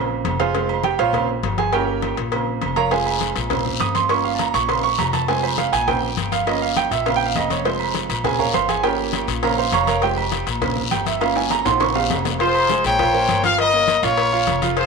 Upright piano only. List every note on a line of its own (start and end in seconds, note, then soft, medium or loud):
0.00 0.38 C#3 medium
0.00 0.38 A#3 soft
0.00 0.38 C4 medium
0.40 0.81 F4 medium
0.40 0.81 G#4 medium
0.40 0.81 C5 medium
0.40 0.81 F5 medium
0.54 0.74 F3 medium
0.54 0.74 G#3 medium
0.54 0.75 C4 medium
0.84 0.99 G4 medium
0.84 0.99 G5 medium
0.99 1.27 F4 medium
0.99 1.27 C5 medium
0.99 1.27 C#5 medium
0.99 1.27 F5 loud
1.13 1.33 C#3 medium
1.13 1.34 A#3 medium
1.13 1.34 C4 medium
1.58 1.73 G#4 medium
1.58 1.73 G#5 medium
1.72 2.15 F3 medium
1.72 2.15 A#3 medium
1.72 2.16 C#4 medium
1.72 2.15 G4 medium
1.72 2.15 A#4 medium
1.72 2.15 C#5 medium
1.72 2.15 G5 medium
2.32 2.74 C#3 soft
2.32 2.75 A#3 soft
2.32 2.75 C4 medium
2.77 2.91 A#4 medium
2.77 2.91 C#5 medium
2.77 2.90 F5 medium
2.77 2.91 A#5 loud
2.91 3.48 F3 medium
2.91 3.48 G#3 soft
2.91 3.48 C4 medium
2.91 3.33 G#4 medium
2.91 3.33 C5 medium
2.91 3.33 F5 medium
2.91 3.33 G#5 medium
3.50 4.07 C#3 medium
3.50 4.07 A#3 soft
3.50 4.07 C4 medium
3.81 3.95 D#6 medium
3.95 4.09 C6 loud
4.09 4.66 F3 medium
4.09 4.66 A#3 medium
4.09 4.67 C#4 medium
4.09 4.25 C#6 loud
4.24 4.39 F5 medium
4.35 4.37 A5 medium
4.39 4.54 A#5 medium
4.54 4.69 C#6 loud
4.68 4.88 C#3 medium
4.68 4.89 A#3 medium
4.68 4.89 C4 medium
4.68 4.78 C6 medium
4.79 4.82 C6 medium
4.84 4.98 C#6 loud
4.99 5.13 A#5 medium
5.14 5.28 A5 medium
5.28 5.70 F3 medium
5.28 5.71 G#3 medium
5.28 5.71 C4 medium
5.28 5.43 G#5 medium
5.43 5.58 C5 medium
5.58 5.72 F5 medium
5.73 5.87 G#5 loud
5.87 6.07 C#3 medium
5.87 6.07 A#3 medium
5.87 6.08 C4 medium
5.87 6.29 G5 medium
6.32 6.47 F5 medium
6.47 6.89 F3 medium
6.47 6.89 A#3 soft
6.47 6.90 C#4 medium
6.47 6.61 D#5 medium
6.62 6.76 F5 medium
6.77 6.91 G5 loud
6.91 7.06 E5 loud
7.06 7.62 C#3 medium
7.06 7.63 A#3 medium
7.06 7.63 C4 medium
7.06 7.16 F5 medium
7.16 7.26 G5 loud
7.26 7.36 F5 medium
7.36 7.50 D#5 medium
7.50 7.65 C#5 medium
7.65 8.07 F3 medium
7.65 8.08 G#3 medium
7.65 8.08 C4 medium
7.65 7.93 C5 medium
8.24 8.44 C#3 medium
8.24 8.44 A#3 soft
8.24 8.45 C4 medium
8.24 8.39 G#4 medium
8.24 8.39 G#5 medium
8.39 8.54 A#4 medium
8.39 8.54 C#5 medium
8.39 8.53 F5 medium
8.39 8.54 A#5 medium
8.54 8.69 C5 medium
8.54 8.69 F5 medium
8.54 8.69 C6 medium
8.69 8.83 G#4 medium
8.69 8.83 G#5 medium
8.83 9.40 F3 medium
8.83 9.40 A#3 medium
8.83 9.40 C#4 medium
8.83 9.25 G4 medium
8.83 9.25 A#4 medium
8.83 9.25 C#5 medium
8.83 9.25 G5 medium
9.42 9.63 C#3 medium
9.42 9.63 A#3 medium
9.42 9.63 C4 medium
9.42 9.58 A#4 medium
9.42 9.58 C#5 medium
9.42 9.57 F5 medium
9.42 9.58 A#5 medium
9.58 9.73 C5 medium
9.58 9.72 F5 medium
9.58 9.73 C6 medium
9.73 9.87 C#5 medium
9.73 9.87 F5 medium
9.73 9.86 A#5 medium
9.73 9.87 C#6 loud
9.88 10.02 A#4 medium
9.88 10.03 C#5 medium
9.88 10.02 F5 medium
9.88 10.02 A#5 medium
10.02 10.22 F3 medium
10.02 10.23 G#3 medium
10.02 10.23 C4 medium
10.02 10.44 G4 medium
10.02 10.44 G5 medium
10.62 10.81 C#3 medium
10.62 10.82 A#3 medium
10.62 10.82 C4 medium
10.91 11.06 G5 medium
11.07 11.21 E5 medium
11.21 11.63 F3 medium
11.21 11.63 A#3 medium
11.21 11.64 C#4 medium
11.21 11.36 F5 medium
11.36 11.51 G#5 medium
11.51 11.65 A#5 medium
11.66 11.80 C6 loud
11.80 12.37 C#3 medium
11.80 12.37 A#3 medium
11.80 12.37 C4 medium
11.80 11.95 C#6 loud
11.96 12.04 F5 medium
12.40 12.64 F3 medium
12.40 12.65 F4 medium
12.40 12.65 F5 medium
12.70 12.94 G#3 medium
12.70 12.94 G#4 medium
12.70 12.94 C5 medium
12.99 13.11 F3 medium
12.99 13.12 F4 medium
12.99 13.12 F5 medium
13.14 13.38 A#3 medium
13.14 13.39 A#4 medium
13.14 13.39 C5 medium
13.44 13.68 F3 medium
13.44 13.68 F4 medium
13.44 13.68 F5 medium
13.73 13.98 A#3 medium
13.73 13.98 A#4 medium
13.73 13.98 C#5 medium
14.03 14.27 F3 loud
14.03 14.27 F4 loud
14.03 14.27 F5 loud
14.32 14.57 F3 loud
14.32 14.57 F4 medium
14.32 14.57 F5 medium
14.62 14.74 F3 loud
14.62 14.75 F4 medium
14.62 14.75 F5 loud
14.77 14.86 F3 medium
14.77 14.86 F4 medium
14.77 14.86 F5 loud